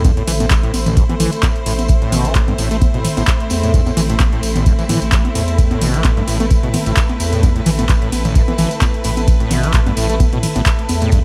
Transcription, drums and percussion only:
0.04 kick, closed hi-hat, ride, tambourine, high conga
0.17 closed hi-hat
0.27 open hi-hat, mid tom, ride, tambourine
0.40 closed hi-hat, tambourine, high conga
0.50 kick, clap, closed hi-hat, ride, tambourine
0.63 closed hi-hat
0.74 open hi-hat, ride, tambourine, high conga
0.86 closed hi-hat, mid tom, tambourine
0.97 kick, closed hi-hat, ride, tambourine
1.09 closed hi-hat, high conga
1.20 open hi-hat, mid tom, ride, tambourine
1.32 closed hi-hat, tambourine
1.43 kick, clap, closed hi-hat, ride, tambourine, high conga
1.56 closed hi-hat
1.66 open hi-hat, ride, tambourine
1.79 closed hi-hat, tambourine, high conga
1.88 kick, closed hi-hat, ride, tambourine
2.02 closed hi-hat
2.12 open hi-hat, mid tom, ride, tambourine, high conga
2.25 closed hi-hat, tambourine
2.35 kick, clap, closed hi-hat, ride, tambourine
2.48 closed hi-hat, high conga
2.58 open hi-hat, ride, tambourine
2.71 closed hi-hat, tambourine
2.81 kick, closed hi-hat, ride, tambourine, high conga
2.94 closed hi-hat
3.05 open hi-hat, mid tom, ride, tambourine
3.17 closed hi-hat, tambourine, high conga
3.27 kick, clap, closed hi-hat, ride, tambourine
3.40 closed hi-hat
3.50 open hi-hat, ride, tambourine, high conga
3.63 closed hi-hat, tambourine
3.74 kick, closed hi-hat, ride, tambourine
3.86 closed hi-hat, tambourine, high conga
3.97 open hi-hat, mid tom, ride, tambourine
4.10 closed hi-hat, tambourine
4.20 kick, clap, closed hi-hat, ride, tambourine, high conga
4.33 closed hi-hat
4.43 open hi-hat, ride, tambourine
4.56 closed hi-hat, mid tom, tambourine, high conga
4.66 kick, closed hi-hat, ride, tambourine
4.79 closed hi-hat, tambourine
4.89 open hi-hat, mid tom, ride, tambourine, high conga
5.01 closed hi-hat, tambourine
5.12 kick, clap, closed hi-hat, ride, tambourine
5.25 closed hi-hat, high conga
5.35 open hi-hat, ride, tambourine
5.48 closed hi-hat, tambourine
5.58 kick, closed hi-hat, ride, tambourine
5.71 closed hi-hat, high conga
5.81 open hi-hat, mid tom, ride, tambourine
5.94 closed hi-hat, tambourine
6.04 kick, clap, closed hi-hat, ride, tambourine, high conga
6.17 closed hi-hat
6.28 open hi-hat, ride, tambourine
6.40 closed hi-hat, tambourine, high conga
6.50 kick, closed hi-hat, ride, tambourine
6.63 closed hi-hat
6.74 open hi-hat, mid tom, ride, tambourine, high conga
6.86 closed hi-hat, tambourine
6.97 kick, clap, closed hi-hat, ride, tambourine
7.09 closed hi-hat, high conga
7.20 open hi-hat, ride, tambourine
7.33 closed hi-hat, tambourine
7.43 kick, closed hi-hat, ride, tambourine, high conga
7.56 closed hi-hat
7.66 open hi-hat, mid tom, ride, tambourine
7.79 closed hi-hat, tambourine, high conga
7.89 kick, clap, closed hi-hat, ride, tambourine
8.02 closed hi-hat
8.12 open hi-hat, ride, tambourine, high conga
8.25 closed hi-hat, mid tom, tambourine
8.35 kick, closed hi-hat, ride, tambourine
8.48 closed hi-hat, high conga
8.58 open hi-hat, mid tom, ride, tambourine
8.71 closed hi-hat, tambourine
8.81 kick, clap, closed hi-hat, ride, tambourine, high conga
8.94 closed hi-hat
9.04 open hi-hat, ride, tambourine
9.16 closed hi-hat, tambourine, high conga
9.28 kick, closed hi-hat, ride, tambourine
9.40 closed hi-hat
9.51 open hi-hat, mid tom, ride, tambourine, high conga
9.63 closed hi-hat, tambourine
9.74 kick, clap, closed hi-hat, ride, tambourine
9.86 closed hi-hat, high conga
9.97 open hi-hat, ride, tambourine
10.09 closed hi-hat, tambourine
10.20 kick, closed hi-hat, ride, tambourine, high conga
10.33 closed hi-hat
10.43 open hi-hat, mid tom, ride, tambourine
10.55 closed hi-hat, tambourine, high conga
10.66 kick, clap, closed hi-hat, ride, tambourine
10.79 closed hi-hat
10.89 open hi-hat, ride, tambourine, high conga
11.01 closed hi-hat, tambourine
11.11 kick, closed hi-hat, ride, tambourine

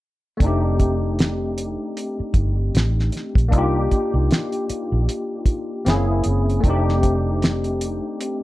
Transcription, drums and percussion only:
0.40 kick, closed hi-hat
0.80 kick, closed hi-hat
1.19 snare, closed hi-hat
1.58 closed hi-hat
1.97 closed hi-hat
2.34 kick, closed hi-hat
2.75 snare, closed hi-hat
2.99 snare
3.12 snare, closed hi-hat
3.35 kick, closed hi-hat
3.52 kick, closed hi-hat
3.91 kick, closed hi-hat
4.31 snare, closed hi-hat
4.52 closed hi-hat
4.69 closed hi-hat
5.09 closed hi-hat
5.46 kick, closed hi-hat
5.86 snare, closed hi-hat
6.24 closed hi-hat
6.50 closed hi-hat
6.64 kick, closed hi-hat
6.89 snare
7.03 kick, closed hi-hat
7.42 snare, closed hi-hat
7.64 closed hi-hat
7.81 closed hi-hat
8.21 closed hi-hat

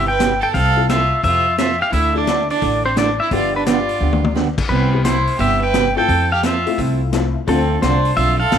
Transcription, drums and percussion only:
0.20 snare, closed hi-hat
0.54 kick, open hi-hat
0.89 snare, closed hi-hat
1.24 kick, open hi-hat
1.58 snare, closed hi-hat
1.93 kick, open hi-hat
2.27 snare, closed hi-hat
2.50 open hi-hat
2.62 kick, open hi-hat
2.97 snare, closed hi-hat
3.31 kick, open hi-hat
3.66 snare, closed hi-hat
3.89 open hi-hat
4.13 high tom
4.24 high tom
4.36 snare
4.58 kick, crash
4.70 kick
5.05 snare, closed hi-hat
5.27 open hi-hat
5.39 kick, open hi-hat
5.74 snare, closed hi-hat
6.09 kick, open hi-hat
6.43 snare, closed hi-hat
6.67 open hi-hat
6.78 kick, open hi-hat
7.13 snare, closed hi-hat
7.48 kick, open hi-hat
7.82 snare, closed hi-hat
8.05 open hi-hat
8.17 kick, open hi-hat
8.52 snare, closed hi-hat

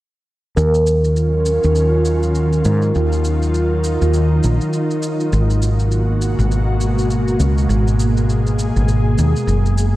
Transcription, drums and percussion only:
0.57 shaker
0.74 shaker
0.87 shaker
1.04 shaker
1.16 shaker
1.46 shaker
1.63 shaker
1.75 shaker
2.05 shaker
2.23 shaker
2.35 shaker
2.53 shaker
2.65 shaker
2.82 shaker
2.95 shaker
3.12 shaker
3.24 shaker
3.42 shaker
3.54 shaker
3.84 shaker
4.02 shaker
4.14 shaker
4.43 shaker
4.61 shaker
4.73 shaker
4.91 shaker
5.03 shaker
5.20 shaker
5.33 shaker
5.50 shaker
5.62 shaker
5.80 shaker
5.92 shaker
6.22 shaker
6.39 shaker
6.52 shaker
6.81 shaker
6.99 shaker
7.11 shaker
7.28 shaker
7.40 shaker
7.58 shaker
7.70 shaker
7.88 shaker
8.00 shaker
8.17 shaker
8.30 shaker
8.47 shaker
8.59 shaker
8.76 shaker
8.88 shaker
9.18 shaker
9.36 shaker
9.48 shaker
9.66 shaker
9.78 shaker

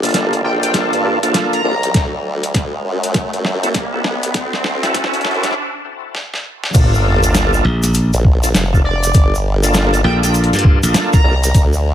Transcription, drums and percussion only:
0.03 closed hi-hat
0.05 closed hi-hat
0.09 closed hi-hat
0.11 closed hi-hat
0.12 snare, closed hi-hat
0.14 closed hi-hat
0.33 closed hi-hat
0.63 closed hi-hat
0.74 snare, closed hi-hat
0.93 closed hi-hat
1.23 closed hi-hat
1.34 snare, closed hi-hat
1.53 closed hi-hat
1.83 closed hi-hat
1.94 kick, snare, closed hi-hat
2.43 closed hi-hat
2.54 kick, snare, closed hi-hat
3.03 closed hi-hat
3.14 kick, snare, closed hi-hat
3.33 closed hi-hat
3.45 snare
3.63 closed hi-hat
3.74 kick, snare, closed hi-hat
4.04 snare
4.23 closed hi-hat
4.34 kick, snare, closed hi-hat
4.53 snare
4.64 snare
4.83 snare, closed hi-hat
4.94 kick, snare, closed hi-hat
5.04 snare
5.14 closed hi-hat
5.21 snare, closed hi-hat
5.25 closed hi-hat
5.31 closed hi-hat
5.35 closed hi-hat
5.43 snare, closed hi-hat
5.51 snare
6.15 snare
6.34 snare
6.64 snare
6.74 kick, closed hi-hat, crash, shaker
6.94 shaker
7.23 closed hi-hat, shaker
7.35 snare, closed hi-hat, shaker
7.53 shaker
7.83 snare, closed hi-hat, shaker
7.94 closed hi-hat, shaker
8.13 closed hi-hat, shaker
8.25 kick
8.43 closed hi-hat, shaker
8.55 snare, closed hi-hat, shaker
8.74 kick, shaker
9.04 closed hi-hat, shaker
9.14 kick, closed hi-hat, shaker
9.35 shaker
9.63 closed hi-hat, shaker
9.74 snare, closed hi-hat, shaker
9.94 closed hi-hat, shaker
10.23 snare, closed hi-hat, shaker
10.34 closed hi-hat, shaker
10.44 closed hi-hat
10.53 snare, closed hi-hat, shaker
10.59 closed hi-hat
10.65 kick
10.83 closed hi-hat, shaker
10.94 snare, closed hi-hat, shaker
11.13 kick, snare, closed hi-hat, shaker
11.44 closed hi-hat, shaker
11.55 kick, closed hi-hat, shaker
11.73 shaker

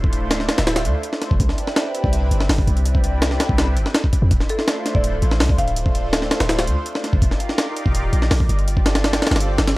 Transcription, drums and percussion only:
0.04 kick
0.13 closed hi-hat
0.31 snare, closed hi-hat
0.40 snare
0.49 snare, closed hi-hat
0.58 snare, closed hi-hat
0.67 snare, closed hi-hat
0.76 snare, closed hi-hat
0.85 closed hi-hat
1.03 closed hi-hat
1.13 snare
1.22 snare, closed hi-hat
1.31 kick
1.40 kick, closed hi-hat
1.49 snare
1.58 closed hi-hat
1.67 snare
1.76 snare, closed hi-hat
1.95 closed hi-hat
2.04 kick
2.13 closed hi-hat
2.31 closed hi-hat
2.40 snare
2.49 snare, open hi-hat
2.58 kick
2.67 closed hi-hat
2.77 closed hi-hat
2.86 closed hi-hat
2.95 kick
3.04 closed hi-hat
3.22 snare, closed hi-hat
3.31 snare
3.40 snare, closed hi-hat
3.49 kick
3.58 snare, closed hi-hat
3.77 closed hi-hat
3.86 snare
3.94 snare, closed hi-hat
4.04 kick
4.13 kick, closed hi-hat
4.31 kick, closed hi-hat
4.40 snare
4.49 closed hi-hat
4.59 snare
4.68 snare, closed hi-hat
4.86 snare, closed hi-hat
4.95 kick
5.04 closed hi-hat
5.22 closed hi-hat
5.31 snare
5.40 snare, open hi-hat
5.49 kick
5.58 closed hi-hat
5.68 closed hi-hat
5.76 closed hi-hat
5.86 kick
5.95 closed hi-hat
6.13 snare, closed hi-hat
6.22 snare
6.31 snare, closed hi-hat
6.40 snare, closed hi-hat
6.49 snare, closed hi-hat
6.59 snare, closed hi-hat
6.67 closed hi-hat
6.86 closed hi-hat
6.95 snare
7.04 snare, closed hi-hat
7.13 kick
7.22 kick, closed hi-hat
7.31 snare
7.40 closed hi-hat
7.49 snare
7.58 snare, closed hi-hat
7.76 closed hi-hat
7.86 kick
7.95 closed hi-hat
8.13 closed hi-hat
8.22 snare
8.31 snare, open hi-hat
8.40 kick
8.49 closed hi-hat
8.59 closed hi-hat
8.68 closed hi-hat
8.77 kick
8.86 snare, closed hi-hat
8.95 snare, closed hi-hat
9.04 snare, closed hi-hat
9.13 snare, closed hi-hat
9.22 snare, closed hi-hat
9.27 snare, closed hi-hat
9.31 snare, closed hi-hat
9.36 snare, closed hi-hat
9.40 closed hi-hat
9.58 snare, closed hi-hat
9.67 snare, closed hi-hat

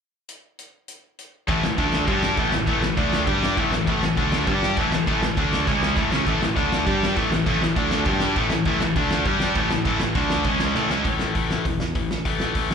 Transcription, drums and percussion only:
0.29 closed hi-hat
0.59 closed hi-hat
0.88 closed hi-hat
1.19 closed hi-hat
1.48 kick, crash
1.64 snare
1.78 kick, crash
1.92 snare
2.08 kick, crash
2.23 snare
2.37 kick, crash
2.52 snare
2.67 kick, crash
2.83 snare
2.97 kick, crash
3.13 snare
3.27 kick, crash
3.43 snare
3.57 kick, crash
3.72 snare
3.87 kick, crash
4.03 snare
4.17 kick, crash
4.32 snare
4.47 kick, crash
4.63 snare
4.77 kick, crash
4.92 snare
5.07 kick, crash
5.23 snare
5.37 kick, crash
5.53 snare
5.67 kick, crash
5.83 snare
5.97 kick, crash
6.12 snare
6.27 kick, crash
6.42 snare
6.57 kick, crash
6.72 snare
6.87 kick, crash
7.03 snare
7.17 kick, crash
7.32 snare
7.46 kick, crash
7.62 snare
7.76 kick, crash
7.91 snare
8.05 kick, crash
8.20 snare
8.36 kick, crash
8.50 snare
8.65 kick, crash
8.80 snare
8.96 kick, crash
9.11 snare
9.26 kick, crash
9.40 snare
9.55 kick, crash
9.71 snare
9.85 kick, crash
10.00 snare
10.15 kick, crash
10.30 snare
10.44 kick, crash
10.60 snare
10.74 snare
10.90 snare
11.05 kick, open hi-hat
11.19 snare
11.35 kick, open hi-hat
11.51 snare
11.65 kick, open hi-hat
11.80 snare
11.95 kick, open hi-hat
12.11 snare
12.25 kick, open hi-hat
12.40 snare
12.55 kick, open hi-hat
12.71 snare

